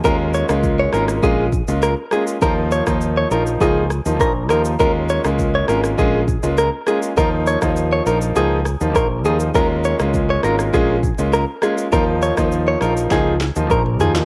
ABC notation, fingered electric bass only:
X:1
M:4/4
L:1/16
Q:1/4=101
K:Bbm
V:1 name="Fingered electric bass" clef=bass
E,,3 D,,3 A,,,2 B,,,3 D,,2 z3 | E,,3 E,,3 B,,,2 D,,3 E,, B,,,2 E,,2 | E,,3 D,,3 A,,,2 B,,,3 D,,2 z3 | E,,3 E,,3 B,,,2 D,,3 E,, B,,,2 E,,2 |
E,,3 D,,3 A,,,2 B,,,3 D,,2 z3 | E,,3 E,,3 B,,,2 D,,3 E,, B,,,2 E,,2 |]